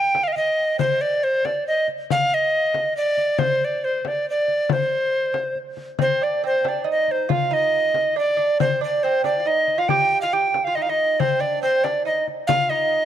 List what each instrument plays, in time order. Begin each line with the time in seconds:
Already playing: recorder G5
0.15 frame drum
0.24 recorder F5
0.28 recorder D#5
0.33 recorder F5, frame drum
0.37 recorder D#5
0.79 recorder C5, frame drum
1.01 recorder D5, frame drum
1.24 recorder C5
1.45 recorder D5, frame drum
1.68 recorder D#5
1.88 frame drum
2.10 recorder F5, frame drum
2.32 recorder D#5, frame drum
2.74 frame drum
2.97 recorder D5
3.18 frame drum
3.38 recorder C5, frame drum
3.61 recorder D5, frame drum
3.84 recorder C5
4.05 recorder D5, frame drum
4.30 recorder D5
4.48 frame drum
4.69 recorder C5, frame drum
5.34 frame drum
5.55 frame drum
5.77 frame drum
5.99 lute C4, recorder C5, frame drum
6.21 lute D4, recorder D5, frame drum
6.44 lute C4, recorder C5
6.64 lute D4, frame drum
6.69 recorder D5
6.84 lute D#4
6.91 recorder D#5
7.08 recorder C5, frame drum
7.29 lute F4, recorder F5, frame drum
7.51 lute D#4, recorder D#5, frame drum
7.94 frame drum
8.16 lute D4, recorder D5
8.37 lute D4, frame drum
8.60 lute C4, recorder C5, frame drum
8.80 lute D4, recorder D5, frame drum
9.03 lute C4, recorder C5
9.24 lute D4, recorder D5, frame drum
9.40 lute F4
9.45 lute D#4, recorder D#5
9.68 frame drum
9.78 lute F4, recorder F5
9.89 lute G4, recorder G5, frame drum
10.12 frame drum
10.21 lute F4, recorder F5
10.33 lute G4, recorder G5
10.54 frame drum
10.64 lute F4, recorder F5
10.75 lute D#4, recorder D#5
10.82 recorder F5
10.89 lute D#4, recorder D#5
11.20 lute C4, recorder C5, frame drum
11.39 lute D4, recorder D5, frame drum
11.63 lute C4, recorder C5
11.84 lute D4, recorder D5, frame drum
12.05 lute D#4, recorder D#5
12.28 frame drum
12.47 lute F4, recorder F5, frame drum
12.69 lute D#4, recorder D#5, frame drum